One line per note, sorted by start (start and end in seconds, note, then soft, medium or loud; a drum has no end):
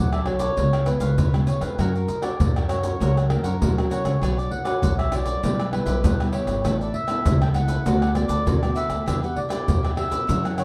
0.00 0.48 B1 medium
0.00 0.54 F#3 medium
0.00 0.21 A3 medium
0.00 0.21 D4 medium
0.00 0.21 F#4 medium
0.00 0.10 A4 medium
0.00 0.13 F#5 loud
0.13 0.25 A4 soft
0.13 0.26 B4 soft
0.13 0.26 D5 soft
0.13 0.20 E5 medium
0.13 pandeiro soft
0.13 tamborim medium
0.13 maracas soft
0.25 0.44 A3 medium
0.25 0.40 D4 soft
0.25 0.44 D4 medium
0.25 0.45 F#4 medium
0.25 0.40 A4 medium
0.25 0.39 B4 medium
0.25 0.89 C#5 loud
0.25 0.38 D5 medium
0.25 pandeiro medium
0.25 tamborim medium
0.39 0.56 A4 medium
0.39 0.55 B4 soft
0.39 0.55 D5 medium
0.39 pandeiro medium
0.39 maracas medium
0.39 surdo soft
0.57 0.96 C#2 medium
0.57 1.15 C#3 medium
0.57 0.83 G#3 medium
0.57 0.83 B3 medium
0.57 0.83 F4 medium
0.57 0.71 B4 medium
0.57 0.72 C#5 medium
0.57 0.72 F5 medium
0.57 pandeiro medium
0.57 maracas medium
0.57 surdo medium
0.73 0.86 C#5 soft
0.73 0.87 F5 soft
0.73 pandeiro soft
0.73 tamborim medium
0.73 maracas soft
0.86 1.15 G#3 medium
0.86 1.16 B3 medium
0.86 1.16 F4 medium
0.86 1.44 B4 medium
0.86 muted cavaquinho stroke soft
0.86 pandeiro medium
0.86 tamborim medium
0.86 maracas medium
1.00 1.20 C#2 medium
1.00 1.17 C#5 medium
1.00 1.16 F5 medium
1.00 pandeiro medium
1.00 maracas medium
1.00 surdo soft
1.18 1.76 G#2 medium
1.18 1.57 C#3 medium
1.18 1.46 B4 medium
1.18 1.47 C#5 medium
1.18 1.48 F5 medium
1.18 pandeiro medium
1.18 maracas medium
1.18 surdo loud
1.34 1.74 G#3 medium
1.34 1.75 B3 medium
1.34 1.75 F4 medium
1.34 pandeiro soft
1.34 tamborim medium
1.34 maracas soft
1.47 1.62 B4 medium
1.47 1.62 C#5 medium
1.47 1.60 F5 medium
1.47 pandeiro medium
1.47 maracas medium
1.61 1.75 F2 medium
1.61 1.78 B4 medium
1.61 1.78 C#5 soft
1.61 1.76 F5 medium
1.61 pandeiro medium
1.61 tamborim medium
1.61 maracas medium
1.61 surdo soft
1.78 2.04 F#2 loud
1.78 2.37 F#3 soft
1.78 2.07 C#4 medium
1.78 1.93 F#4 medium
1.78 2.08 F#4 soft
1.78 2.21 A#4 loud
1.78 1.93 A#4 medium
1.78 2.08 A#4 soft
1.78 1.94 C#5 medium
1.78 1.94 F#5 medium
1.78 pandeiro medium
1.78 tamborim medium
1.78 maracas medium
1.78 surdo medium
1.95 2.08 A#4 soft
1.95 2.08 C#5 soft
1.95 2.09 F#5 soft
1.95 pandeiro soft
1.95 maracas soft
2.08 muted cavaquinho stroke soft
2.08 pandeiro medium
2.08 maracas medium
2.08 surdo soft
2.22 2.64 F#4 medium
2.22 2.64 A#4 medium
2.22 2.53 A#4 medium
2.22 2.53 C#5 medium
2.22 2.65 D5 medium
2.22 2.52 F#5 medium
2.22 pandeiro medium
2.22 tamborim medium
2.22 maracas medium
2.40 2.91 F#2 medium
2.40 2.97 C#3 medium
2.40 pandeiro medium
2.40 maracas medium
2.40 surdo loud
2.56 2.69 A#4 soft
2.56 2.69 C#5 soft
2.56 2.69 F#5 soft
2.56 pandeiro soft
2.56 tamborim medium
2.56 maracas soft
2.68 2.80 C#4 soft
2.68 2.83 F#4 medium
2.68 2.80 F#4 medium
2.68 2.80 A#4 medium
2.68 2.84 A#4 medium
2.68 3.26 C#5 medium
2.68 2.83 C#5 medium
2.68 2.81 F#5 medium
2.68 pandeiro medium
2.68 tamborim medium
2.68 maracas medium
2.83 3.25 C#4 medium
2.83 3.25 F#4 medium
2.83 3.25 A#4 medium
2.83 2.99 A#4 soft
2.83 2.98 C#5 soft
2.83 2.98 F#5 medium
2.83 pandeiro medium
2.83 maracas medium
2.83 surdo soft
3.00 3.43 C#2 medium
3.00 3.58 F#3 medium
3.00 3.14 F#4 medium
3.00 3.15 A#4 medium
3.00 3.15 C#5 medium
3.00 3.16 F#5 medium
3.00 pandeiro medium
3.00 maracas medium
3.00 surdo medium
3.17 3.29 A#4 soft
3.17 3.30 C#5 soft
3.17 3.30 F#5 soft
3.17 pandeiro soft
3.17 tamborim medium
3.17 maracas soft
3.29 3.48 C#4 medium
3.29 3.48 F#4 medium
3.29 3.87 A#4 medium
3.29 3.49 A#4 medium
3.29 muted cavaquinho stroke soft
3.29 pandeiro medium
3.29 tamborim medium
3.43 3.63 F#2 medium
3.43 3.60 A#4 medium
3.43 3.59 C#5 medium
3.43 3.59 F#5 medium
3.43 pandeiro medium
3.43 maracas medium
3.43 surdo soft
3.61 4.19 C#3 medium
3.61 4.00 F#3 medium
3.61 3.72 C#4 medium
3.61 3.89 F#4 medium
3.61 3.72 F#4 medium
3.61 3.90 A#4 medium
3.61 3.72 A#4 medium
3.61 3.90 C#5 soft
3.61 3.91 F#5 medium
3.61 pandeiro medium
3.61 maracas medium
3.61 surdo loud
3.78 4.18 C#4 medium
3.78 4.18 F#4 medium
3.78 4.18 A#4 medium
3.78 pandeiro soft
3.78 tamborim medium
3.78 maracas soft
3.90 4.05 F#4 medium
3.90 4.05 A#4 medium
3.90 4.38 C#5 medium
3.90 4.04 C#5 medium
3.90 4.03 F#5 medium
3.90 pandeiro medium
3.90 maracas medium
4.04 4.18 C#2 medium
4.04 4.20 A#4 soft
4.04 4.20 C#5 soft
4.04 4.19 F#5 soft
4.04 pandeiro medium
4.04 tamborim medium
4.04 maracas medium
4.04 surdo soft
4.21 4.47 B1 medium
4.21 4.80 B3 soft
4.21 4.36 D4 medium
4.21 4.63 D4 medium
4.21 4.63 F#4 medium
4.21 4.36 B4 medium
4.21 4.63 C#5 soft
4.21 4.36 C#5 medium
4.21 4.37 D5 medium
4.21 pandeiro medium
4.21 tamborim medium
4.21 maracas medium
4.21 surdo medium
4.37 4.50 B4 soft
4.37 4.50 C#5 soft
4.37 4.51 D5 medium
4.37 4.51 D5 soft
4.37 pandeiro soft
4.37 maracas soft
4.51 4.98 F#5 loud
4.51 muted cavaquinho stroke soft
4.51 pandeiro medium
4.51 surdo soft
4.64 5.07 D4 medium
4.64 5.07 F#4 medium
4.64 4.96 B4 medium
4.64 4.96 C#5 medium
4.64 5.07 C#5 medium
4.64 4.95 D5 medium
4.64 pandeiro medium
4.64 tamborim medium
4.64 maracas medium
4.82 5.34 B1 medium
4.82 5.40 F#3 medium
4.82 pandeiro medium
4.82 maracas medium
4.82 surdo loud
4.98 5.11 B4 soft
4.98 5.12 C#5 soft
4.98 5.12 D5 medium
4.98 5.13 E5 medium
4.98 pandeiro soft
4.98 tamborim medium
4.98 maracas soft
5.11 5.26 D4 medium
5.11 5.40 D4 medium
5.11 5.40 F#4 medium
5.11 5.26 B4 medium
5.11 5.40 C#5 medium
5.11 5.25 C#5 medium
5.11 5.69 D5 loud
5.11 5.24 D5 medium
5.11 pandeiro medium
5.11 tamborim medium
5.11 maracas medium
5.11 surdo soft
5.25 5.41 B4 soft
5.25 5.41 C#5 medium
5.25 5.40 D5 medium
5.25 pandeiro medium
5.25 maracas medium
5.25 surdo soft
5.42 5.82 B1 medium
5.42 6.01 B2 medium
5.42 5.61 G3 soft
5.42 5.61 B3 soft
5.42 5.57 E4 medium
5.42 5.61 E4 medium
5.42 5.57 G4 medium
5.42 5.58 B4 medium
5.42 5.57 E5 medium
5.42 pandeiro medium
5.42 maracas medium
5.42 surdo medium
5.59 5.72 G4 soft
5.59 5.72 B4 soft
5.59 5.72 E5 soft
5.59 pandeiro soft
5.59 tamborim medium
5.59 maracas soft
5.71 5.98 G3 medium
5.71 5.98 B3 medium
5.71 5.98 E4 medium
5.71 6.30 B4 medium
5.71 muted cavaquinho stroke soft
5.71 pandeiro medium
5.71 tamborim medium
5.86 6.06 B1 medium
5.86 6.02 G4 medium
5.86 6.02 B4 medium
5.86 6.01 E5 medium
5.86 pandeiro medium
5.86 maracas medium
5.86 surdo soft
6.04 6.61 B2 medium
6.04 6.43 B2 medium
6.04 6.14 G3 medium
6.04 6.14 B3 medium
6.04 6.31 E4 medium
6.04 6.15 E4 medium
6.04 6.32 G4 medium
6.04 6.32 B4 medium
6.04 6.33 E5 medium
6.04 pandeiro medium
6.04 maracas medium
6.04 surdo loud
6.20 6.60 G3 medium
6.20 6.60 B3 medium
6.20 6.60 E4 medium
6.20 pandeiro soft
6.20 tamborim medium
6.20 maracas soft
6.32 6.47 E4 medium
6.32 6.47 G4 medium
6.32 6.46 B4 medium
6.32 6.76 C#5 loud
6.32 6.45 E5 medium
6.32 pandeiro medium
6.46 6.61 G#1 medium
6.46 6.63 G4 soft
6.46 6.62 B4 soft
6.46 6.62 E5 soft
6.46 pandeiro medium
6.46 tamborim medium
6.46 maracas medium
6.46 surdo soft
6.64 6.90 A1 medium
6.64 7.22 A2 soft
6.64 7.05 A3 soft
6.64 7.05 B3 soft
6.64 6.78 E4 medium
6.64 7.05 E4 medium
6.64 6.79 A4 medium
6.64 6.79 B4 medium
6.64 6.79 E5 medium
6.64 pandeiro medium
6.64 tamborim medium
6.64 maracas medium
6.64 surdo medium
6.80 6.92 A4 soft
6.80 6.93 B4 soft
6.80 6.96 D5 loud
6.80 6.93 E5 soft
6.80 pandeiro soft
6.80 maracas soft
6.93 7.41 E5 loud
6.93 muted cavaquinho stroke soft
6.93 pandeiro medium
6.93 surdo soft
7.07 7.50 A3 medium
7.07 7.50 B3 medium
7.07 7.50 E4 medium
7.07 7.39 A4 medium
7.07 7.38 B4 medium
7.07 7.38 E5 medium
7.07 pandeiro medium
7.07 tamborim medium
7.07 maracas medium
7.25 7.77 C#2 medium
7.25 7.83 E3 medium
7.25 pandeiro loud
7.25 maracas medium
7.25 surdo loud
7.41 7.53 A4 soft
7.41 7.54 B4 soft
7.41 7.54 E5 medium
7.41 7.48 G5 medium
7.41 pandeiro soft
7.41 tamborim medium
7.41 maracas soft
7.54 7.83 A3 medium
7.54 7.83 B3 medium
7.54 7.68 E4 medium
7.54 7.83 E4 medium
7.54 7.69 A4 medium
7.54 7.68 B4 medium
7.54 7.67 E5 medium
7.54 8.12 F#5 loud
7.54 pandeiro medium
7.54 tamborim medium
7.54 maracas medium
7.54 surdo soft
7.68 7.84 A4 soft
7.68 7.84 B4 medium
7.68 7.83 E5 medium
7.68 pandeiro medium
7.68 maracas medium
7.68 surdo soft
7.86 8.25 D2 loud
7.86 8.44 D3 medium
7.86 8.12 A3 medium
7.86 8.12 B3 medium
7.86 8.00 F#4 medium
7.86 8.12 F#4 medium
7.86 8.00 A4 medium
7.86 8.01 B4 medium
7.86 8.01 D5 medium
7.86 pandeiro medium
7.86 maracas medium
7.86 surdo medium
8.02 8.14 A4 soft
8.02 8.15 B4 soft
8.02 8.15 D5 soft
8.02 pandeiro soft
8.02 tamborim medium
8.02 maracas soft
8.15 8.41 A3 medium
8.15 8.41 B3 medium
8.15 8.42 F#4 medium
8.15 8.78 D5 loud
8.15 muted cavaquinho stroke soft
8.15 pandeiro medium
8.15 tamborim medium
8.15 maracas medium
8.28 8.49 D2 medium
8.28 8.45 A4 medium
8.28 8.44 B4 medium
8.28 8.44 D5 medium
8.28 pandeiro medium
8.28 maracas medium
8.28 surdo soft
8.45 9.04 A2 medium
8.45 8.85 D3 medium
8.45 8.57 A3 medium
8.45 8.57 B3 medium
8.45 8.74 F#4 medium
8.45 8.57 F#4 medium
8.45 8.74 A4 medium
8.45 8.75 B4 medium
8.45 8.76 D5 medium
8.45 pandeiro medium
8.45 maracas medium
8.45 surdo loud
8.62 9.03 A3 medium
8.62 9.03 B3 medium
8.62 9.03 F#4 medium
8.62 pandeiro soft
8.62 tamborim medium
8.62 maracas soft
8.75 8.90 F#4 medium
8.75 8.89 A4 medium
8.75 8.89 B4 medium
8.75 8.87 D5 medium
8.75 9.19 E5 loud
8.75 pandeiro medium
8.75 maracas medium
8.89 9.03 D2 medium
8.89 9.05 A4 soft
8.89 9.05 B4 soft
8.89 9.04 D5 soft
8.89 pandeiro medium
8.89 tamborim medium
8.89 maracas medium
8.89 surdo soft
9.06 9.33 E2 medium
9.06 9.65 E3 soft
9.06 9.17 B3 medium
9.06 9.21 D4 medium
9.06 9.18 D4 soft
9.06 9.21 G4 medium
9.06 9.18 G4 medium
9.06 9.21 B4 medium
9.06 9.21 E5 medium
9.06 pandeiro medium
9.06 tamborim medium
9.06 maracas medium
9.06 surdo medium
9.23 9.48 B3 medium
9.23 9.48 D4 medium
9.23 9.48 G4 medium
9.23 9.35 G4 soft
9.23 9.35 B4 medium
9.23 9.36 E5 medium
9.23 9.39 F#5 medium
9.23 pandeiro soft
9.23 maracas soft
9.36 9.94 D5 loud
9.36 muted cavaquinho stroke soft
9.36 pandeiro medium
9.36 surdo soft
9.49 9.92 B3 medium
9.49 9.92 D4 medium
9.49 9.92 G4 medium
9.49 9.81 G4 medium
9.49 9.80 B4 medium
9.49 9.80 E5 medium
9.49 pandeiro medium
9.49 tamborim medium
9.49 maracas medium
9.68 10.20 F2 medium
9.68 10.26 B2 medium
9.68 pandeiro medium
9.68 maracas medium
9.68 surdo loud
9.83 9.96 G4 soft
9.83 9.96 B4 soft
9.83 9.97 E5 soft
9.83 pandeiro soft
9.83 tamborim medium
9.83 maracas soft
9.96 10.17 B3 medium
9.96 10.11 D4 medium
9.96 10.17 D4 medium
9.96 10.11 G4 medium
9.96 10.18 G4 medium
9.96 10.10 B4 medium
9.96 10.45 E5 loud
9.96 10.09 E5 medium
9.96 pandeiro medium
9.96 tamborim medium
10.10 10.27 G4 medium
10.10 10.26 B4 medium
10.10 10.25 E5 medium
10.10 pandeiro medium
10.10 maracas medium
10.10 surdo soft
10.27 10.64 F#2 loud
10.27 10.64 F#2 medium
10.27 10.38 E3 medium
10.27 10.38 A#3 medium
10.27 10.38 C#4 medium
10.27 10.42 E4 medium
10.27 10.42 A#4 medium
10.27 10.43 C#5 medium
10.27 10.42 F#5 medium
10.27 pandeiro medium
10.27 maracas medium
10.27 surdo medium
10.43 10.64 E3 medium
10.43 10.64 A#3 medium
10.43 10.64 C#4 medium
10.43 10.56 A#4 soft
10.43 10.57 C#5 soft
10.43 10.57 F#5 medium
10.43 10.60 F#5 medium
10.43 pandeiro soft
10.43 tamborim medium
10.43 maracas soft
10.57 10.64 C#5 loud
10.57 muted cavaquinho stroke soft
10.57 pandeiro medium
10.57 tamborim medium
10.57 maracas medium